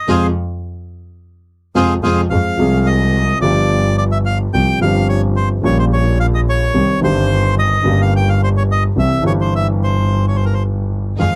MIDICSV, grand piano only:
0, 0, Header, 1, 2, 480
1, 0, Start_track
1, 0, Key_signature, -4, "minor"
1, 0, Tempo, 555042
1, 79, Time_signature, 4, 2, 24, 8
1, 9820, End_track
2, 0, Start_track
2, 0, Title_t, "Grand piano"
2, 0, Program_c, 0, 0
2, 72, Note_on_c, 0, 48, 85
2, 72, Note_on_c, 0, 53, 86
2, 74, Note_on_c, 0, 56, 86
2, 228, Note_off_c, 0, 48, 0
2, 228, Note_off_c, 0, 53, 0
2, 229, Note_off_c, 0, 56, 0
2, 1514, Note_on_c, 0, 48, 82
2, 1514, Note_on_c, 0, 53, 79
2, 1516, Note_on_c, 0, 56, 82
2, 1671, Note_off_c, 0, 48, 0
2, 1671, Note_off_c, 0, 53, 0
2, 1672, Note_off_c, 0, 56, 0
2, 1756, Note_on_c, 0, 56, 78
2, 1757, Note_on_c, 0, 48, 74
2, 1757, Note_on_c, 0, 53, 77
2, 1913, Note_off_c, 0, 48, 0
2, 1913, Note_off_c, 0, 53, 0
2, 1913, Note_off_c, 0, 56, 0
2, 2000, Note_on_c, 0, 53, 53
2, 2001, Note_on_c, 0, 60, 40
2, 2002, Note_on_c, 0, 56, 44
2, 2004, Note_on_c, 0, 41, 52
2, 2006, Note_on_c, 0, 68, 47
2, 2204, Note_off_c, 0, 56, 0
2, 2204, Note_off_c, 0, 60, 0
2, 2205, Note_off_c, 0, 41, 0
2, 2205, Note_off_c, 0, 53, 0
2, 2206, Note_off_c, 0, 68, 0
2, 2225, Note_on_c, 0, 53, 69
2, 2237, Note_on_c, 0, 56, 62
2, 2240, Note_on_c, 0, 36, 72
2, 2241, Note_on_c, 0, 48, 77
2, 2249, Note_on_c, 0, 60, 56
2, 2259, Note_on_c, 0, 68, 73
2, 2919, Note_off_c, 0, 53, 0
2, 2926, Note_off_c, 0, 56, 0
2, 2927, Note_off_c, 0, 36, 0
2, 2928, Note_off_c, 0, 48, 0
2, 2932, Note_off_c, 0, 60, 0
2, 2937, Note_off_c, 0, 68, 0
2, 2946, Note_on_c, 0, 53, 68
2, 2954, Note_on_c, 0, 59, 63
2, 2958, Note_on_c, 0, 43, 82
2, 2959, Note_on_c, 0, 31, 79
2, 2964, Note_on_c, 0, 62, 62
2, 2974, Note_on_c, 0, 67, 75
2, 3868, Note_off_c, 0, 53, 0
2, 3872, Note_off_c, 0, 59, 0
2, 3874, Note_off_c, 0, 43, 0
2, 3875, Note_off_c, 0, 31, 0
2, 3877, Note_off_c, 0, 62, 0
2, 3882, Note_off_c, 0, 67, 0
2, 3921, Note_on_c, 0, 53, 46
2, 3924, Note_on_c, 0, 36, 54
2, 3926, Note_on_c, 0, 60, 40
2, 3927, Note_on_c, 0, 55, 39
2, 3928, Note_on_c, 0, 48, 51
2, 3929, Note_on_c, 0, 67, 54
2, 4125, Note_off_c, 0, 53, 0
2, 4126, Note_off_c, 0, 36, 0
2, 4127, Note_off_c, 0, 60, 0
2, 4128, Note_off_c, 0, 48, 0
2, 4128, Note_off_c, 0, 55, 0
2, 4129, Note_off_c, 0, 67, 0
2, 4149, Note_on_c, 0, 53, 61
2, 4158, Note_on_c, 0, 55, 57
2, 4163, Note_on_c, 0, 43, 73
2, 4165, Note_on_c, 0, 31, 72
2, 4171, Note_on_c, 0, 60, 62
2, 4183, Note_on_c, 0, 67, 71
2, 4841, Note_off_c, 0, 53, 0
2, 4845, Note_off_c, 0, 55, 0
2, 4847, Note_off_c, 0, 43, 0
2, 4849, Note_off_c, 0, 31, 0
2, 4851, Note_off_c, 0, 60, 0
2, 4858, Note_off_c, 0, 67, 0
2, 4858, Note_on_c, 0, 49, 70
2, 4871, Note_on_c, 0, 55, 59
2, 4875, Note_on_c, 0, 34, 84
2, 4875, Note_on_c, 0, 46, 83
2, 4881, Note_on_c, 0, 58, 67
2, 4892, Note_on_c, 0, 67, 70
2, 5780, Note_off_c, 0, 49, 0
2, 5787, Note_off_c, 0, 55, 0
2, 5789, Note_off_c, 0, 34, 0
2, 5789, Note_off_c, 0, 46, 0
2, 5792, Note_off_c, 0, 58, 0
2, 5797, Note_off_c, 0, 67, 0
2, 5826, Note_on_c, 0, 51, 48
2, 5826, Note_on_c, 0, 55, 43
2, 5830, Note_on_c, 0, 48, 57
2, 5831, Note_on_c, 0, 36, 53
2, 5831, Note_on_c, 0, 67, 51
2, 5832, Note_on_c, 0, 60, 42
2, 6035, Note_off_c, 0, 51, 0
2, 6035, Note_off_c, 0, 55, 0
2, 6037, Note_off_c, 0, 36, 0
2, 6037, Note_off_c, 0, 48, 0
2, 6037, Note_off_c, 0, 60, 0
2, 6037, Note_off_c, 0, 67, 0
2, 6058, Note_on_c, 0, 51, 64
2, 6067, Note_on_c, 0, 55, 57
2, 6073, Note_on_c, 0, 43, 77
2, 6075, Note_on_c, 0, 31, 75
2, 6078, Note_on_c, 0, 60, 60
2, 6090, Note_on_c, 0, 67, 78
2, 6751, Note_off_c, 0, 51, 0
2, 6756, Note_off_c, 0, 55, 0
2, 6759, Note_off_c, 0, 43, 0
2, 6760, Note_off_c, 0, 31, 0
2, 6761, Note_off_c, 0, 60, 0
2, 6767, Note_off_c, 0, 67, 0
2, 6770, Note_on_c, 0, 49, 65
2, 6782, Note_on_c, 0, 55, 64
2, 6783, Note_on_c, 0, 43, 81
2, 6787, Note_on_c, 0, 31, 76
2, 6790, Note_on_c, 0, 58, 59
2, 6805, Note_on_c, 0, 67, 80
2, 7694, Note_off_c, 0, 49, 0
2, 7700, Note_off_c, 0, 55, 0
2, 7701, Note_off_c, 0, 43, 0
2, 7702, Note_off_c, 0, 31, 0
2, 7704, Note_off_c, 0, 58, 0
2, 7711, Note_off_c, 0, 67, 0
2, 7748, Note_on_c, 0, 36, 54
2, 7748, Note_on_c, 0, 52, 45
2, 7749, Note_on_c, 0, 55, 41
2, 7750, Note_on_c, 0, 48, 54
2, 7751, Note_on_c, 0, 60, 41
2, 7754, Note_on_c, 0, 67, 53
2, 7953, Note_off_c, 0, 36, 0
2, 7953, Note_off_c, 0, 52, 0
2, 7954, Note_off_c, 0, 48, 0
2, 7954, Note_off_c, 0, 55, 0
2, 7955, Note_off_c, 0, 60, 0
2, 7956, Note_off_c, 0, 67, 0
2, 7974, Note_on_c, 0, 52, 70
2, 7986, Note_on_c, 0, 55, 59
2, 7988, Note_on_c, 0, 31, 78
2, 7991, Note_on_c, 0, 43, 77
2, 7997, Note_on_c, 0, 60, 59
2, 8006, Note_on_c, 0, 67, 72
2, 9585, Note_off_c, 0, 52, 0
2, 9591, Note_off_c, 0, 55, 0
2, 9592, Note_off_c, 0, 31, 0
2, 9593, Note_off_c, 0, 43, 0
2, 9596, Note_off_c, 0, 60, 0
2, 9601, Note_off_c, 0, 67, 0
2, 9674, Note_on_c, 0, 51, 44
2, 9678, Note_on_c, 0, 41, 49
2, 9678, Note_on_c, 0, 56, 42
2, 9679, Note_on_c, 0, 53, 54
2, 9679, Note_on_c, 0, 60, 42
2, 9682, Note_on_c, 0, 65, 49
2, 9820, Note_off_c, 0, 41, 0
2, 9820, Note_off_c, 0, 51, 0
2, 9820, Note_off_c, 0, 53, 0
2, 9820, Note_off_c, 0, 56, 0
2, 9820, Note_off_c, 0, 60, 0
2, 9820, Note_off_c, 0, 65, 0
2, 9820, End_track
0, 0, End_of_file